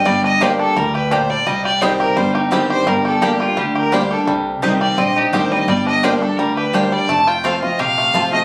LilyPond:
<<
  \new Staff \with { instrumentName = "Fiddle" } { \time 4/4 \key g \minor \tempo 4 = 171 d''8 ees''8 c''8 a'8 bes'8 b'8 c''8 d''8 | ees''8 d''8 c''8 bes'8 c''8 ees'8 g'8 c''8 | bes'8 a'8 g'8 f'8 g'8 bes'8 c''8 a'8 | r4. d''8 ees''8 g'8 c''8 ees''8 |
d''8 ees''8 c''8 a'8 bes'8 b'8 c''8 d''8 | a''8 g''8 f''8 ees''8 f''4. ees''8 | }
  \new Staff \with { instrumentName = "Mandolin" } { \time 4/4 \key g \minor r4 <bes g' d'' g''>16 r4. r16 <bes g' d'' g''>16 r8. | r4 <c' g' ees'' g''>16 r4. r16 <c' g' ees'' g''>16 r8. | r4 <bes g' d'' g''>16 r4. r16 <bes g' d'' g''>16 r8. | r4 <c' g' ees'' g''>16 r4. r16 <c' g' ees'' g''>16 r8. |
r4 <bes g' d'' g''>16 r4. r16 <bes g' d'' g''>16 r8. | r4 <c' f' c'' a''>16 r4. r16 <c' f' c'' a''>16 r8. | }
  \new Staff \with { instrumentName = "Five-string banjo" } { \time 4/4 \key g \minor g8 d'8 g'8 d'8 g8 g'8 d'8 g8 | g8 g'8 g8 g'8 g8 g'8 g8 g'8 | g8 g'8 g8 g'8 g8 g'8 g8 g'8 | g4 ees'8 g'8 c'8 ees'8 g'8 g8 |
g8 d'8 g'8 d'8 g8 g'8 d'8 g8 | a8 f'8 a8 f'8 g'8 a8 f'8 a8 | }
  \new Staff \with { instrumentName = "Steel-string acoustic guitar" } { \time 4/4 \key g \minor << { r4 <g bes d' g'>4 r2 | r4 <ees g c' g'>4 r4 <ees g c' g'>4 | r4 <g bes d' g'>4 r4 <g bes d' g'>4 | r4 <ees g c' g'>4 r4 <ees g c' g'>4 |
r4 <g bes d' g'>8 <d' g'>8 r4 <g bes d' g'>4 | r4 <f a c' f'>8 <c' f'>8 r4 <f a c' f'>8 <c' f'>8 | } \\ { g,2 a,4 bes,4 | c2 g,2 | g,2 d2 | c2 g,2 |
g,2 d2 | f,2 c2 | } >> }
  \new Staff \with { instrumentName = "Upright bass" } { \clef bass \time 4/4 \key g \minor g,,2 d,2 | c,2 g,,2 | g,,2 d,2 | c,4 c,4 bes,,4 a,,4 |
g,,2 d,2 | f,,2 bes,,4 a,,4 | }
>>